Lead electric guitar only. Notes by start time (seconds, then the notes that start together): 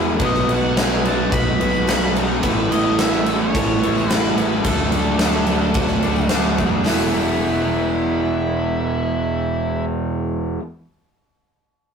0.25 D#5
0.53 F#5
0.79 G#5
1.06 A5
1.33 B5
2.43 B4
2.70 D#5
2.98 E5
3.40 C#5
4.11 B4
4.37 B4
4.63 A4
6.86 E4